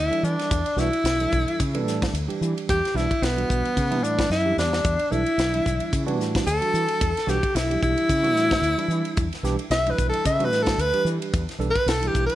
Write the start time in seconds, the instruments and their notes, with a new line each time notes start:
0.00 alto saxophone E4
0.10 tine electric piano E3 G3 D4 A4, muted fretless electric bass stroke, ride
0.23 fretless electric bass E3, alto saxophone D4, hi-hat pedal
0.39 snare, ride
0.51 fretless electric bass E2, kick, hi-hat pedal, ride
0.66 ride
0.76 fretless electric bass B1, tine electric piano E3 G3 D4 F#4, alto saxophone E4, snare, hi-hat pedal
0.93 tine electric piano D4 F#4, ride
1.04 fretless electric bass B1, snare, hi-hat pedal, ride
1.20 tine electric piano E3 G3 D4 A4, ride
1.32 fretless electric bass B1, kick, hi-hat pedal
1.46 muted fretless electric bass stroke, ride
1.60 fretless electric bass C#3, kick, hi-hat pedal, ride
1.74 tine electric piano E3 G3 D4 A4, ride
1.85 fretless electric bass A2, snare, hi-hat pedal
2.02 kick, snare, ride
2.13 fretless electric bass D2, hi-hat pedal, ride
2.28 tine electric piano E3 G3 D4 G4, ride
2.41 fretless electric bass E3, hi-hat pedal
2.58 ride
2.69 fretless electric bass E2, alto saxophone G4, kick, hi-hat pedal, ride
2.85 snare, ride
2.94 fretless electric bass B1, tine electric piano E3 G3 D4 E4, alto saxophone E4, snare, hi-hat pedal
3.11 kick, ride
3.22 fretless electric bass B1, alto saxophone B3, snare, hi-hat pedal, ride
3.36 tine electric piano E3 G3 D4 F#4, ride
3.50 fretless electric bass B1, kick, hi-hat pedal
3.64 muted fretless electric bass stroke, ride
3.77 fretless electric bass C#3, kick, hi-hat pedal, ride
3.90 tine electric piano E3 G3 D4 E4, ride
4.03 fretless electric bass A2, alto saxophone D4, hi-hat pedal
4.19 kick, snare, ride
4.30 fretless electric bass F#2, alto saxophone E4, snare, hi-hat pedal
4.45 tine electric piano E3 G3 D4 G4
4.57 fretless electric bass E2, alto saxophone D4, snare, hi-hat pedal
4.73 snare
4.84 fretless electric bass E2, kick, hi-hat pedal, ride
4.99 ride
5.11 fretless electric bass B1, tine electric piano E3 G3 D4 A4, alto saxophone E4, hi-hat pedal
5.26 tine electric piano D4 F#4, ride
5.38 fretless electric bass B1, snare, hi-hat pedal, ride
5.53 tine electric piano E3 G3 D4 E4, ride
5.66 fretless electric bass B1, kick, hi-hat pedal
5.80 ride
5.93 fretless electric bass C#3, kick, hi-hat pedal, ride
6.06 tine electric piano E3 G3 D4 F#4, ride
6.19 fretless electric bass A2, snare, hi-hat pedal
6.35 kick, snare, ride
6.47 fretless electric bass D2, alto saxophone A4, hi-hat pedal, ride
6.61 tine electric piano E3 G3 D4 F#4, ride
6.74 fretless electric bass E3, hi-hat pedal
6.88 ride
7.01 fretless electric bass E2, kick, hi-hat pedal, ride
7.17 snare, ride
7.26 fretless electric bass B1, tine electric piano E3 G3 D4 F#4, alto saxophone G4, snare, hi-hat pedal
7.43 kick, ride
7.55 fretless electric bass B1, alto saxophone E4, snare, hi-hat pedal, ride
7.70 tine electric piano E3 G3 D4 G4, ride
7.82 fretless electric bass B1, alto saxophone E4, kick, hi-hat pedal
7.96 muted fretless electric bass stroke, ride
8.09 fretless electric bass C#3, kick, hi-hat pedal, ride
8.23 tine electric piano E3 G3 D4 F#4, ride
8.35 fretless electric bass A2, snare, hi-hat pedal
8.51 kick, snare, ride
8.62 fretless electric bass D2, hi-hat pedal, ride
8.78 tine electric piano E3 G3 D4 E4, ride
8.88 fretless electric bass E3, hi-hat pedal
9.05 ride
9.17 fretless electric bass E2, kick, hi-hat pedal, ride
9.33 snare, ride
9.43 fretless electric bass B1, tine electric piano E3 G3 D4 G4, snare, hi-hat pedal
9.59 ride
9.70 fretless electric bass B1, alto saxophone E5, snare, hi-hat pedal, ride
9.86 tine electric piano E3 G3 D4 E4, ride
9.90 alto saxophone B4
9.98 fretless electric bass B1, kick, hi-hat pedal
10.09 alto saxophone A4, muted fretless electric bass stroke
10.13 ride
10.25 fretless electric bass C#3, alto saxophone E5, kick, hi-hat pedal, ride
10.39 tine electric piano E3 G3 D4 F#4, ride
10.44 alto saxophone B4
10.51 fretless electric bass A2, snare, hi-hat pedal
10.63 alto saxophone A4, ride
10.67 kick, snare
10.78 fretless electric bass D2, alto saxophone B4, hi-hat pedal, ride
10.93 tine electric piano E3 G3 D4 G4, muted fretless electric bass stroke, ride
11.05 fretless electric bass E3, hi-hat pedal
11.22 ride
11.33 fretless electric bass E2, kick, hi-hat pedal, ride
11.49 snare, ride
11.59 fretless electric bass B1, tine electric piano E3 G3 D4 A4, hi-hat pedal
11.70 tine electric piano D4, alto saxophone B4
11.75 tine electric piano A4, kick, ride
11.86 fretless electric bass B1, alto saxophone A4, snare, hi-hat pedal, ride
12.01 tine electric piano E3 G3 D4 E4, ride
12.07 alto saxophone G4
12.15 fretless electric bass B1, kick, hi-hat pedal
12.26 alto saxophone B4, muted fretless electric bass stroke, ride